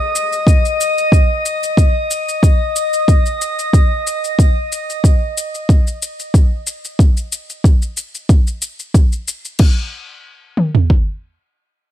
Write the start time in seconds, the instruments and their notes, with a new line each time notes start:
Already playing: synth texture D#5
0.15 shaker
0.33 shaker
0.47 kick, shaker
0.65 shaker
0.81 shaker
0.98 shaker
1.12 kick, shaker
1.46 shaker
1.63 shaker
1.77 kick, shaker
2.11 shaker
2.29 shaker
2.43 kick, shaker
2.76 shaker
2.93 shaker
3.08 kick, shaker
3.26 shaker
3.41 shaker
3.59 shaker
3.73 kick, shaker
4.07 shaker
4.24 shaker
4.39 kick, shaker
4.72 shaker
4.90 shaker
5.04 kick, shaker
5.38 shaker
5.55 shaker
5.69 kick, shaker
5.87 shaker
6.02 shaker
6.20 shaker
6.34 kick, shaker
6.67 shaker
6.85 shaker
6.99 kick, shaker
7.17 shaker
7.32 shaker
7.50 shaker
7.64 kick, shaker
7.82 shaker
7.97 shaker
8.15 shaker
8.29 kick, shaker
8.47 shaker
8.62 shaker
8.79 shaker
8.94 kick, shaker
9.13 shaker
9.28 shaker
9.45 shaker
9.59 kick, crash
10.57 mid tom
10.75 floor tom
10.90 kick